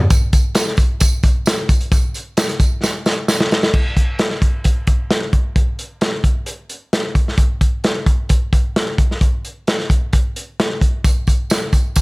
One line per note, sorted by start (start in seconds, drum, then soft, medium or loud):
0.10 kick loud
0.10 closed hi-hat medium
0.10 tambourine medium
0.33 kick medium
0.33 closed hi-hat medium
0.33 tambourine medium
0.55 snare loud
0.55 closed hi-hat medium
0.55 tambourine loud
0.68 snare soft
0.77 kick loud
0.77 closed hi-hat medium
0.77 tambourine medium
1.00 kick medium
1.00 closed hi-hat medium
1.00 tambourine loud
1.23 kick loud
1.23 closed hi-hat medium
1.23 tambourine soft
1.46 snare loud
1.46 closed hi-hat medium
1.46 tambourine medium
1.69 kick medium
1.69 closed hi-hat medium
1.69 tambourine soft
1.81 closed hi-hat soft
1.92 kick loud
1.92 closed hi-hat medium
1.92 tambourine medium
2.14 closed hi-hat medium
2.14 tambourine medium
2.37 snare loud
2.37 closed hi-hat medium
2.37 tambourine loud
2.49 snare soft
2.49 closed hi-hat medium
2.60 kick medium
2.60 closed hi-hat medium
2.60 tambourine medium
2.83 snare medium
2.83 tambourine loud
3.06 snare medium
3.06 tambourine medium
3.28 snare medium
3.28 tambourine medium
3.41 snare medium
3.51 snare medium
3.51 tambourine soft
3.63 snare medium
3.74 kick loud
3.74 crash medium
3.97 kick medium
3.97 closed hi-hat medium
4.19 snare medium
4.19 closed hi-hat medium
4.31 snare soft
4.42 kick medium
4.42 closed hi-hat medium
4.64 kick medium
4.64 closed hi-hat medium
4.87 kick medium
4.87 closed hi-hat medium
5.11 snare medium
5.11 closed hi-hat medium
5.33 kick medium
5.33 closed hi-hat medium
5.56 kick loud
5.56 closed hi-hat medium
5.79 closed hi-hat medium
6.01 snare medium
6.01 closed hi-hat medium
6.24 kick medium
6.24 closed hi-hat medium
6.46 closed hi-hat medium
6.69 closed hi-hat medium
6.93 snare loud
6.93 closed hi-hat medium
7.15 kick medium
7.15 closed hi-hat medium
7.28 snare soft
7.37 kick loud
7.37 closed hi-hat medium
7.61 kick medium
7.61 closed hi-hat medium
7.84 snare medium
7.84 closed hi-hat medium
8.06 kick medium
8.06 closed hi-hat medium
8.29 kick medium
8.29 closed hi-hat medium
8.53 kick medium
8.53 closed hi-hat medium
8.76 snare loud
8.76 closed hi-hat medium
8.98 kick medium
8.98 closed hi-hat medium
9.11 snare soft
9.21 kick loud
9.21 closed hi-hat medium
9.45 closed hi-hat medium
9.67 snare medium
9.67 closed hi-hat medium
9.80 snare soft
9.90 kick medium
9.90 closed hi-hat medium
10.13 kick medium
10.13 closed hi-hat medium
10.36 closed hi-hat medium
10.60 snare loud
10.60 closed hi-hat medium
10.81 kick medium
10.81 closed hi-hat medium
11.04 kick loud
11.04 closed hi-hat medium
11.04 tambourine medium
11.27 kick medium
11.27 closed hi-hat medium
11.27 tambourine soft
11.50 snare loud
11.50 closed hi-hat medium
11.50 tambourine loud
11.73 kick medium
11.73 closed hi-hat medium
11.73 tambourine medium
11.96 kick medium
11.96 closed hi-hat medium
11.96 tambourine loud